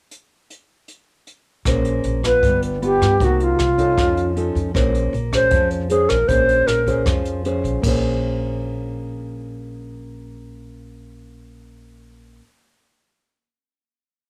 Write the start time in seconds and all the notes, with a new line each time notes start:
0.11 closed hi-hat
0.50 closed hi-hat
0.88 closed hi-hat
1.27 closed hi-hat
1.65 A#1 A#3 C#4 G#4 C5, kick, cross-stick, closed hi-hat
1.85 closed hi-hat
2.04 A#1, closed hi-hat
2.23 B3 F4 B4, kick, cross-stick, closed hi-hat
2.43 G1 G3, kick, closed hi-hat
2.62 closed hi-hat
2.82 B3 F4 G4, closed hi-hat
3.01 G2, kick, cross-stick, closed hi-hat
3.20 C2 C3 A#3 D#4 F#4, kick, closed hi-hat
3.24 F#4
3.40 F4, closed hi-hat
3.59 C2, cross-stick, closed hi-hat
3.78 C#4 D#4 A4, kick, closed hi-hat
3.97 F2 F3, kick, cross-stick, closed hi-hat
4.17 closed hi-hat
4.36 C#4 D#4 A4, closed hi-hat
4.55 F2, kick, closed hi-hat
4.74 A#1 A#3 C#4 G#4 C5, kick, cross-stick, closed hi-hat
4.95 closed hi-hat
5.13 A#1, closed hi-hat
5.32 C#4 G#4 C5, kick, cross-stick, closed hi-hat
5.51 F2 F3, kick, closed hi-hat
5.71 closed hi-hat
5.90 C#4 G#4 C5, closed hi-hat
6.09 A#1 A#4, kick, cross-stick, closed hi-hat
6.28 A#1 A#3 C#4 G#4 C5, kick, closed hi-hat
6.49 closed hi-hat
6.67 A#1 A#4, cross-stick, closed hi-hat
6.87 C#4 G#4 C5, kick, closed hi-hat
7.06 F2 F3, kick, cross-stick, closed hi-hat
7.25 closed hi-hat
7.45 C#4 G#4 C5, closed hi-hat
7.64 A#1, kick, closed hi-hat
7.82 A#1 A#3 C#4, kick, crash
7.87 G#4 C5